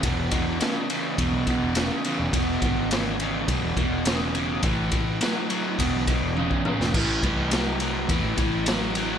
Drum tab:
CC |----------------|----------------|----------------|x---------------|
RD |x-x-x-x-x-x-x-x-|x-x-x-x-x-x-x-x-|x-x-x-x-x-x-----|--x-x-x-x-x-x-x-|
SD |----o-------o---|----o-------o---|----o----------o|----o-------o---|
T1 |----------------|----------------|------------o---|----------------|
T2 |----------------|----------------|--------------o-|----------------|
BD |o-o-----o-o-----|o-o-----o-o-----|o-o-----o-o--o--|o-o-----o-o-----|